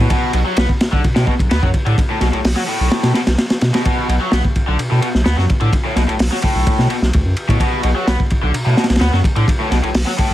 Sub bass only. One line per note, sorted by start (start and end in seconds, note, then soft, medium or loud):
0.34 0.43 B1 medium
0.57 0.67 B1 medium
0.93 1.02 B1 loud
1.04 1.14 B2 soft
1.16 1.25 B2 medium
1.39 1.49 B1 medium
1.51 1.61 D2 loud
1.63 1.72 F#2 medium
1.86 1.96 A2 medium
2.21 2.31 B1 medium
2.33 2.42 B1 soft
2.45 2.54 B1 medium
2.80 2.89 B1 loud
3.04 3.13 B2 medium
3.27 3.36 B1 medium
3.62 3.72 B2 medium
4.09 4.19 B1 loud
4.32 4.42 B1 loud
4.68 4.77 B1 loud
4.79 4.89 B2 soft
4.92 5.01 B2 medium
5.15 5.24 B1 medium
5.26 5.36 D2 loud
5.38 5.47 F#2 medium
5.61 5.71 A2 medium
5.96 6.06 B1 loud
6.08 6.17 B1 soft
6.20 6.29 B1 medium
6.55 6.64 B1 loud
6.79 6.88 B2 medium
7.02 7.11 B1 medium
7.15 7.24 D2 loud
7.25 7.35 F#2 medium
7.49 7.58 A2 medium
7.84 7.94 B1 loud
8.07 8.17 B1 medium
8.43 8.52 B1 loud
8.54 8.64 B2 soft
8.66 8.75 B2 medium
8.90 8.99 B1 medium
9.01 9.11 D2 loud
9.13 9.22 F#2 medium
9.36 9.46 A2 medium
9.71 9.81 B1 loud
9.83 9.92 B1 soft
9.95 10.04 B1 loud
10.30 10.34 B1 loud